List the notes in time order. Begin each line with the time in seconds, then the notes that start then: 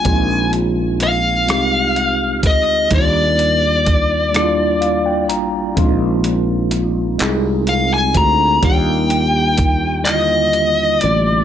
Already playing: G#5
0.03 A#1 G#3 C4 D4, kick, closed hi-hat
0.07 F4
0.13 D#4
0.53 closed hi-hat
1.00 F5, closed hi-hat
1.47 C2 G#3 C4 D#4 G4, cross-stick, closed hi-hat
1.96 closed hi-hat
2.43 D2 D#5, kick, closed hi-hat
2.90 D#2 G3 A#3 D4 E4, kick, closed hi-hat
2.94 D5
3.00 F4
3.39 closed hi-hat
3.86 kick, closed hi-hat
4.32 G3 A#3 D4 E4, closed hi-hat
4.36 cross-stick
4.42 F4
4.81 F5, closed hi-hat
5.06 G5
5.29 A1 A#5, closed hi-hat
5.75 A#1 G#3 C4 D4 F4, kick, closed hi-hat
5.85 D#4
6.24 closed hi-hat
6.71 closed hi-hat
7.18 C2 G#3 C4 D#4, clap, closed hi-hat
7.22 G#4
7.67 F5, closed hi-hat
7.94 G#5
8.14 D2 A#5, kick, closed hi-hat
8.61 D#2 G3 A#3 D4 F4 G5, kick, closed hi-hat
9.10 closed hi-hat
9.57 kick, closed hi-hat
10.04 D3 G3 A#3 D#5, clap, closed hi-hat
10.08 E4
10.14 F4
10.53 closed hi-hat
11.01 A1 D5, closed hi-hat